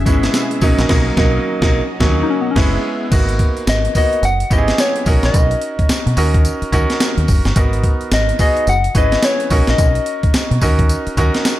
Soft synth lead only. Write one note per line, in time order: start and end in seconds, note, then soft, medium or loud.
0.00 2.24 C#4 loud
2.23 2.32 D#4 medium
2.30 2.43 C#4 medium
2.41 2.52 B3 medium
2.51 2.57 C#4 medium
3.69 3.94 D#5 loud
3.98 4.26 D#5 loud
4.25 4.54 F#5 loud
4.53 4.82 D#5 loud
4.80 5.24 C#5 medium
5.25 6.31 D#5 loud
8.14 8.38 D#5 loud
8.41 8.71 D#5 loud
8.69 8.96 F#5 loud
8.97 9.26 D#5 loud
9.25 9.71 C#5 medium
9.70 10.80 D#5 medium